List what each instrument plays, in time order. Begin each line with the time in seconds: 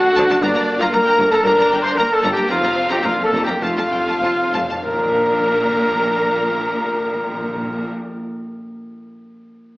Already playing: harp D3 A3 A4 D5, viola section A3, french horn section F#4, oboe F#4, flute F#5, violin section F#5
0.09 harp D4
0.15 double bass section D2, cello section D3, violin section A5
0.25 harp A3
0.30 cello section D3, violin section A5
0.42 double bass section G1, harp G2, cello section G2, viola section A#3, french horn section D4, oboe D4, violin section D5 A#5, flute D5
0.55 cello section G2, harp D3, violin section A#5
0.75 harp D4, french horn section F4
0.80 cello section G2, oboe F4, violin section F5 A#5, flute F5
0.92 double bass section G1, cello section G2, french horn section A#4, oboe A#4, harp D5, violin section A#5, flute A#5
1.05 cello section G2, violin section G5
1.09 harp A#3
1.18 double bass section G1, cello section G2, violin section A#5
1.26 harp D3
1.30 cello section G2, french horn section A4, oboe A4, violin section A5 A#5, flute A5
1.43 double bass section G1, harp G2, cello section G2, viola section D4, french horn section A#4, oboe A#4, violin section A#5, flute A#5
1.57 cello section G2, violin section A#5
1.61 harp A#3
1.70 double bass section G1, cello section G2, violin section G5
1.79 harp D4, french horn section C5, violin section C6, flute C6
1.83 cello section G2, oboe C5, violin section A#5
1.95 double bass section G1, cello section G2, viola section A#3, french horn section A#4, oboe A#4, harp D5, violin section A#5, flute A#5
1.99 violin section A#5
2.12 harp A#3, french horn section A4, oboe A4, flute A5, violin section A5
2.23 double bass section G1, cello section G2, violin section A#5
2.31 harp D3, french horn section G4, oboe G4, flute G5, violin section G5
2.36 cello section G2, violin section A#5
2.49 double bass section F1, timpani F2, harp F2, cello section F2, viola section C4, french horn section F4, oboe F4, flute F5, violin section F5 A#5
2.63 cello section F2, violin section A#5
2.86 harp D4, french horn section G4, violin section A#5
2.91 cello section F2, oboe G4, flute G5, violin section G5
3.03 double bass section F1, cello section F2, viola section A#3, french horn section F4, oboe F4, harp D5, flute F5, violin section F5 A#5
3.19 cello section F2, harp A#3, violin section F5, flute A5
3.24 french horn section A4, oboe A4, violin section A5
3.33 double bass section F1, cello section F2, violin section A#5
3.43 harp F3, french horn section G4, oboe G4, flute G5, violin section G5
3.47 cello section F2, violin section A#5
3.62 double bass section F1, harp F2, cello section F2, timpani F2, viola section A3, french horn section F4, oboe F4, flute F5, violin section F5 A5
3.78 cello section F2, timpani F2, harp C3, violin section A5
3.88 double bass section F1, timpani F2, violin section G5
3.93 cello section F2
3.98 timpani F2, harp G4
4.07 timpani F2, cello section F2, violin section A5
4.15 timpani F2
4.21 double bass section F1, cello section F2, viola section C4, harp C5, violin section A5
4.26 timpani F2
4.35 timpani F2
4.42 timpani F2, harp A3
4.53 double bass section F1, timpani F2, cello section F2, violin section A5
4.62 timpani F2, harp C3
4.69 cello section F2, timpani F2, violin section A5
4.83 double bass section A#1, timpani A#2, harp A#2, cello section A#2, viola section D4 A#4, french horn section A#4, oboe A#4, violin section A#4 A#5, flute A#5
4.91 timpani A#2, harp A#3
4.98 timpani A#2, harp F4
5.05 timpani A#2, harp D5
5.11 timpani A#2, harp F5
5.18 timpani A#2
5.25 timpani A#2
5.32 timpani A#2
5.39 timpani A#2
5.46 timpani A#2
5.53 timpani A#2
5.60 timpani A#2
5.67 timpani A#2
5.74 timpani A#2
5.80 timpani A#2
5.87 timpani A#2
5.93 timpani A#2
6.01 timpani A#2
6.07 timpani A#2
6.15 timpani A#2
6.22 timpani A#2
6.29 timpani A#2
6.36 timpani A#2
6.43 timpani A#2
6.50 timpani A#2
6.57 timpani A#2
6.64 timpani A#2
6.71 timpani A#2
6.78 timpani A#2
6.86 timpani A#2
6.93 timpani A#2
7.00 timpani A#2
7.07 timpani A#2
7.14 timpani A#2
7.21 timpani A#2
7.28 timpani A#2
7.34 timpani A#2
7.41 timpani A#2
7.48 timpani A#2
7.56 timpani A#2
7.63 timpani A#2
7.70 timpani A#2
7.77 timpani A#2
7.84 timpani A#2